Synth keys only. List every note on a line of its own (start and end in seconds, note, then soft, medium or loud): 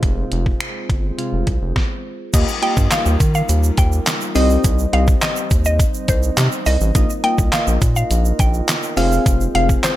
0.00 0.66 C3 medium
0.00 0.66 G#3 medium
0.00 0.66 F4 medium
1.18 1.58 C3 medium
1.18 1.58 G#3 medium
1.18 1.58 F4 medium
2.33 2.47 A#3 medium
2.33 2.47 F4 medium
2.33 2.47 G4 medium
2.33 2.47 D#5 loud
2.62 3.15 A#3 medium
2.62 3.15 F4 medium
2.62 3.15 G4 medium
2.62 3.15 D#5 medium
4.35 4.82 C4 loud
4.35 4.82 D#4 medium
4.35 4.82 G4 medium
4.35 4.82 D#5 loud
4.93 5.46 C4 medium
4.93 5.46 D#4 medium
4.93 5.46 G4 medium
4.93 5.46 D#5 medium
6.95 7.08 A#3 medium
6.95 7.08 D#4 medium
6.95 7.08 F4 medium
6.95 7.09 D#5 loud
7.24 7.76 A#3 medium
7.24 7.77 D#4 medium
7.24 7.77 F4 medium
7.24 7.77 D#5 medium
8.97 9.43 C4 loud
8.97 9.43 F4 medium
8.97 9.43 G#4 medium
8.97 9.43 F5 loud
9.55 9.96 C4 medium
9.55 9.96 F4 medium
9.55 9.96 G#4 medium
9.55 9.96 F5 medium